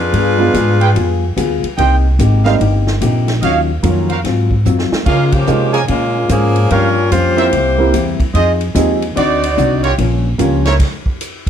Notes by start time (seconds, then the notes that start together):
Already playing: F2 D4 F4 G#4 B4
0.13 G2 G3 B3 F4 G#4, ride
0.38 G#3 B3 D4 F4
0.54 G#2 G3 B3 F4 G#4, hi-hat pedal, ride
0.80 G#4 B4 F5 G5, ride
0.95 F2 G3 B3 F4 G#4, ride
1.37 D2 G3 B3 F4 G#4, hi-hat pedal, ride
1.63 muted upright bass stroke, ride
1.77 C2 C3 A#3 D#4 G4 A#4 C5 D#5 G5, ride
2.19 G#1 C3 A#3 D#4 G4, hi-hat pedal, ride
2.45 G3 A#3 C4 D#4 A#4 C5 D#5 F5, snare, ride
2.60 G1 C3 A#3 D#4 G4, ride
2.87 snare
3.01 A#1 C3 A#3 D#4 G4, hi-hat pedal, ride
3.28 snare, ride
3.42 D#2 D#3 F#3 C#4 F4 F#4 C#5 D#5 F5, ride
3.83 F2 D#3 F#3 A#3 C#4 F4, hi-hat pedal, ride
4.09 F#4 A#4 C5 F5, ride
4.24 G#2 F#3 C4 F4, snare, ride
4.51 kick
4.65 F#2 G#2 F#3 C4 F4, hi-hat pedal
4.79 snare
4.92 muted upright bass stroke, snare
5.06 C#3 G#3 A#3 C#4 F4 G#4 A#4 C#5 F5, kick, crash
5.32 F3 A#3 C#4 G4, kick, ride
5.47 C3 C#3 G#3 A#3 D#4 F4, hi-hat pedal
5.73 F3 A#3 C#4 G#4 A#4 C#5 G#5, ride
5.88 A#2 C#3 G#3 A#3 C#4 F4, ride
6.29 G#2 C#3 F3 G#3 A#3 C#4 F4 G#4, hi-hat pedal, ride
6.56 ride
6.70 G2 F3 G3 A#3 C#4 F4 G4 A#4 C#5 F5, ride
7.11 F2 G2 F3 A#3 C#4 F4 G4 C5, hi-hat pedal, ride
7.37 A#3 C4 E4 G4 A#4 C5 E5, ride
7.52 C2 C3 G3 A#3 E4, ride
7.78 A#3 C4 E4 G4
7.93 E2 C3 G3 A#3 E4, hi-hat pedal, ride
8.20 muted upright bass stroke, kick, ride
8.34 F2 F3 C4 D#4 F4 G#4 C5 D#5, ride
8.61 ride
8.74 D#2 F3 G#3 C4 D#4 G4 G#4, hi-hat pedal, ride
9.02 ride
9.16 D2 D3 C4 D#4 F#4 C5 D5, ride
9.43 ride
9.57 C2 D3 C4 D#4 F#4, hi-hat pedal
9.83 F4 G4 A#4 C#5, ride
9.98 A#1 G2 F3 A#3 C#4, ride
10.38 C#2 G2 F3 A#3 C#4 F4 G4, hi-hat pedal, ride
10.65 E4 A#4 C5 C#5, snare, ride
10.79 kick, snare, crash, ride
11.06 kick
11.21 hi-hat pedal, ride
11.47 kick